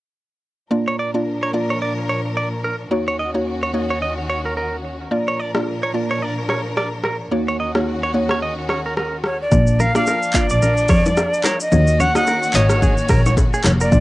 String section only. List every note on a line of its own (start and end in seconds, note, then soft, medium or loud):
0.71 2.89 A#2 medium
0.71 2.89 F3 medium
0.71 2.89 D4 medium
0.71 2.89 A#4 medium
2.91 5.09 D#2 medium
2.91 5.09 D#3 medium
2.91 5.09 C#4 medium
2.91 5.09 F#4 medium
5.11 7.29 A#2 medium
5.11 7.29 F3 medium
5.11 7.29 D4 medium
5.11 7.29 A#4 medium
7.32 9.50 D#2 medium
7.32 9.50 D#3 medium
7.32 9.50 C#4 medium
7.32 9.50 F#4 medium
9.52 11.70 F3 medium
9.52 11.70 A#3 medium
9.52 11.70 D4 medium
11.72 13.90 D#3 medium
11.72 14.00 A#3 medium
11.72 13.90 C#4 medium
11.72 13.90 F#4 medium
13.92 14.00 D4 medium
13.92 14.00 F4 medium